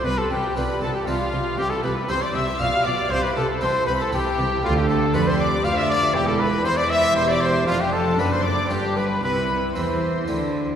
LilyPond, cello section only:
\new Staff \with { instrumentName = "Cello section" } { \clef bass \time 3/4 \key c \major \tempo 4 = 118 c8 c8 c8 c8 c8 c8 | c8 c8 c8 c8 b,8 b,8 | c8 c8 c8 c8 c8 c8 | d,4 f,4 d,4 |
e,4 e4 e,4 | f,4 fis,4 g,4 | c4 e4 d4 | }